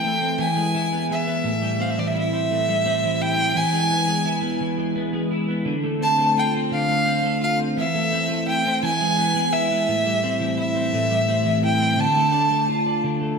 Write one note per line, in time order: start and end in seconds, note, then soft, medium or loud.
0.00 0.38 E3 medium
0.00 0.46 A3 medium
0.00 0.20 C4 medium
0.00 0.74 E4 medium
0.00 0.39 G5 loud
0.21 0.46 C4 medium
0.38 1.98 E3 medium
0.38 1.06 G#5 medium
0.56 1.09 G#3 soft
0.74 2.14 E4 medium
0.92 1.26 B3 soft
1.10 1.52 G#3 medium
1.10 1.83 E5 medium
1.27 1.52 B3 medium
1.44 2.50 A2 medium
1.62 2.67 G3 medium
1.80 2.32 C4 medium
1.80 1.92 F5 medium
1.91 2.01 E5 medium
1.98 3.03 E3 medium
1.98 2.09 D5 medium
2.08 2.16 E5 medium
2.15 3.21 E4 medium
2.15 3.23 E5 medium
2.33 2.84 C4 medium
2.51 3.63 A2 medium
2.69 3.63 G3 medium
2.85 3.37 C4 medium
3.04 3.54 E3 medium
3.21 4.25 E4 medium
3.21 3.59 G5 loud
3.38 3.62 C4 medium
3.54 4.59 E3 medium
3.54 4.62 G#5 loud
3.73 4.06 G#3 medium
3.90 4.40 B3 medium
4.07 4.76 G#3 medium
4.26 5.30 E4 medium
4.42 4.94 B3 medium
4.61 5.65 E3 medium
4.78 5.12 G#3 medium
4.96 5.47 B3 medium
5.13 5.73 G#3 medium
5.31 5.73 E4 medium
5.48 5.73 B3 medium
5.65 6.70 D3 medium
5.84 6.18 A3 medium
6.01 6.53 C4 medium
6.01 6.35 A5 loud
6.18 6.87 A3 medium
6.37 7.40 F4 medium
6.37 6.54 G5 medium
6.54 7.04 C4 medium
6.71 7.76 D3 medium
6.71 7.38 F5 loud
6.89 7.22 A3 medium
7.05 7.58 C4 medium
7.23 7.83 A3 medium
7.41 7.83 F4 medium
7.41 7.59 F5 loud
7.59 7.84 C4 medium
7.77 8.82 E3 medium
7.77 8.44 E5 loud
7.95 8.28 A3 medium
8.12 8.64 C4 medium
8.29 8.89 A3 medium
8.47 9.52 E4 medium
8.47 8.80 G5 medium
8.65 8.89 C4 medium
8.83 10.40 E3 medium
8.83 9.54 G#5 loud
9.01 9.34 G#3 medium
9.18 9.70 B3 medium
9.35 9.94 G#3 medium
9.53 10.57 E4 medium
9.53 10.57 E5 loud
9.71 9.95 B3 medium
9.88 10.92 A2 medium
10.05 11.09 G3 medium
10.23 10.74 C4 medium
10.40 11.44 E3 medium
10.58 11.62 E4 medium
10.58 11.60 E5 medium
10.75 11.27 C4 medium
10.93 12.05 A2 medium
11.10 12.04 G3 medium
11.28 11.79 C4 medium
11.45 11.97 E3 medium
11.63 12.05 E4 medium
11.63 12.01 G5 medium
11.80 12.04 C4 medium
11.97 13.03 D3 medium
11.97 13.04 A5 loud
12.15 12.49 A3 medium
12.32 12.86 D4 medium
12.50 13.20 A3 medium
12.69 13.39 F4 medium
12.86 13.38 D4 medium
13.04 13.39 D3 medium
13.21 13.39 A3 medium